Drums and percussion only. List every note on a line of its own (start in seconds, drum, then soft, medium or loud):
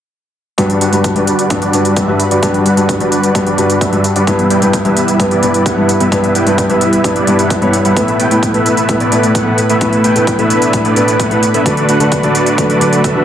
0.58 kick loud
0.58 closed hi-hat medium
0.70 closed hi-hat soft
0.81 closed hi-hat medium
0.93 closed hi-hat soft
1.04 kick loud
1.04 closed hi-hat medium
1.16 closed hi-hat soft
1.27 closed hi-hat medium
1.39 closed hi-hat medium
1.50 kick loud
1.50 closed hi-hat medium
1.62 closed hi-hat soft
1.73 closed hi-hat medium
1.85 closed hi-hat soft
1.96 kick loud
1.96 closed hi-hat medium
2.20 closed hi-hat medium
2.31 closed hi-hat soft
2.43 kick loud
2.43 closed hi-hat medium
2.54 closed hi-hat soft
2.66 closed hi-hat medium
2.77 closed hi-hat soft
2.89 kick loud
2.89 closed hi-hat medium
3.00 closed hi-hat soft
3.12 closed hi-hat medium
3.23 closed hi-hat soft
3.35 kick loud
3.35 closed hi-hat medium
3.47 closed hi-hat soft
3.58 closed hi-hat medium
3.70 closed hi-hat soft
3.81 kick loud
3.81 closed hi-hat medium
3.93 closed hi-hat soft
4.04 closed hi-hat medium
4.16 closed hi-hat soft
4.27 kick loud
4.27 closed hi-hat medium
4.39 closed hi-hat soft
4.50 closed hi-hat medium
4.62 closed hi-hat soft
4.73 kick loud
4.73 closed hi-hat medium
4.85 closed hi-hat soft
4.97 closed hi-hat medium
5.08 closed hi-hat soft
5.20 kick loud
5.20 closed hi-hat medium
5.31 closed hi-hat soft
5.43 closed hi-hat medium
5.54 closed hi-hat soft
5.66 kick loud
5.66 closed hi-hat medium
5.89 closed hi-hat medium
6.00 closed hi-hat soft
6.12 kick loud
6.12 closed hi-hat medium
6.24 closed hi-hat soft
6.35 closed hi-hat medium
6.47 closed hi-hat soft
6.58 kick loud
6.58 closed hi-hat medium
6.70 closed hi-hat soft
6.81 closed hi-hat medium
6.93 closed hi-hat soft
7.04 kick loud
7.04 closed hi-hat medium
7.16 closed hi-hat soft
7.27 closed hi-hat medium
7.39 closed hi-hat soft
7.50 kick loud
7.50 closed hi-hat medium
7.62 closed hi-hat soft
7.73 closed hi-hat medium
7.85 closed hi-hat soft
7.97 kick loud
7.97 closed hi-hat medium
8.08 closed hi-hat soft
8.20 closed hi-hat medium
8.31 closed hi-hat soft
8.43 kick loud
8.43 closed hi-hat medium
8.54 closed hi-hat soft
8.66 closed hi-hat medium
8.77 closed hi-hat soft
8.89 kick loud
8.89 closed hi-hat medium
9.00 closed hi-hat soft
9.12 closed hi-hat medium
9.23 closed hi-hat soft
9.35 kick loud
9.35 closed hi-hat medium
9.58 closed hi-hat medium
9.70 closed hi-hat soft
9.81 kick loud
9.81 closed hi-hat medium
9.93 closed hi-hat soft
10.04 closed hi-hat medium
10.16 closed hi-hat soft
10.27 kick loud
10.27 closed hi-hat medium
10.39 closed hi-hat soft
10.50 closed hi-hat medium
10.62 closed hi-hat soft
10.73 kick loud
10.73 closed hi-hat medium
10.85 closed hi-hat soft
10.96 closed hi-hat medium
11.08 closed hi-hat soft
11.20 kick loud
11.20 closed hi-hat medium
11.31 closed hi-hat soft
11.43 closed hi-hat medium
11.54 closed hi-hat soft
11.66 kick loud
11.66 closed hi-hat medium
11.77 closed hi-hat soft
11.89 closed hi-hat medium
12.00 closed hi-hat soft
12.12 kick loud
12.12 closed hi-hat medium
12.23 closed hi-hat soft
12.35 closed hi-hat medium
12.46 closed hi-hat soft
12.58 kick loud
12.58 closed hi-hat medium
12.70 closed hi-hat soft
12.81 closed hi-hat medium
12.93 closed hi-hat medium
13.04 kick loud
13.04 closed hi-hat medium